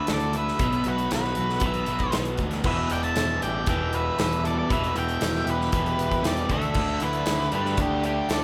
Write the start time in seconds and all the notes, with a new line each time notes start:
Already playing: D3 A3 D4 E4 E5
0.07 D2 A3 A4, snare, closed hi-hat
0.13 D5
0.20 closed hi-hat
0.33 D3 E5, closed hi-hat
0.38 B4
0.48 snare
0.59 B1 B2 F#3, kick, closed hi-hat
0.63 B3
0.72 closed hi-hat
0.84 B1 E4 F#4, closed hi-hat
0.88 B4
0.98 closed hi-hat
1.11 B1 F#3 F#4 B4, snare, closed hi-hat
1.24 snare
1.35 B1 E3, closed hi-hat
1.50 snare
1.60 B1 B2 F#3 B3 B4, kick, closed hi-hat
1.65 B3 E5
1.74 closed hi-hat
1.86 B1 E3, closed hi-hat
1.99 kick, closed hi-hat
2.12 B1 F#3, snare, closed hi-hat
2.25 closed hi-hat
2.37 D2 E3, kick, closed hi-hat
2.51 snare, closed hi-hat
2.64 E1 E2 B2 E3 B4 E5, kick, crash
2.68 E3
2.90 E1 E4 D5 G5, closed hi-hat
3.03 E5 A5, closed hi-hat
3.16 E1 G3, snare, closed hi-hat, tambourine
3.42 A1 E3 D5 G5, closed hi-hat
3.66 E1 E2 B2 E3 B3 E5 G5, kick, closed hi-hat
3.93 E3 B4 E5, closed hi-hat
4.19 E1 G3 B4 E5, snare, closed hi-hat, tambourine
4.32 closed hi-hat
4.44 E3 A4 D5, closed hi-hat
4.56 A4 D5
4.69 E1 E2 B2 E3 B4 E5, kick, closed hi-hat
4.84 closed hi-hat
4.96 E1 E4 E5 G5, closed hi-hat
5.08 closed hi-hat
5.21 E1 G3, snare, closed hi-hat, tambourine
5.36 snare
5.46 E1 E3 G4, closed hi-hat
5.50 B4
5.61 snare
5.72 E1 E2 B2 E3 B3, kick, closed hi-hat
5.86 closed hi-hat
5.99 E1 E3, closed hi-hat
6.12 kick, closed hi-hat
6.23 E2 G3 G4, snare, closed hi-hat, tambourine
6.27 D5
6.37 closed hi-hat
6.49 D2 D3 A3 D4 A4 E5, kick, closed hi-hat
6.61 closed hi-hat
6.74 D2 D3, kick, crash
7.00 D2 E4 B4, closed hi-hat
7.13 closed hi-hat
7.26 D2 A3, snare, closed hi-hat, tambourine
7.40 snare
7.52 G2 D3 A3 D4 G4 B4, closed hi-hat
7.65 snare
7.77 D2 D4 G4, kick, closed hi-hat
8.03 D3 D4 G4, closed hi-hat
8.29 D2 A3 A4 D5, snare, closed hi-hat, tambourine